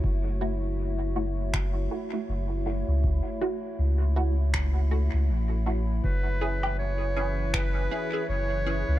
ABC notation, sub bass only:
X:1
M:4/4
L:1/16
Q:"Swing 16ths" 1/4=80
K:F#m
V:1 name="Sub bass" clef=bass
F,,,8- F,,,2 z2 F,,,3 C,,- | C,, z3 C,,6- C,, C,, A,,,4 | F,,,8- F,,,2 z2 F,,,3 C,, |]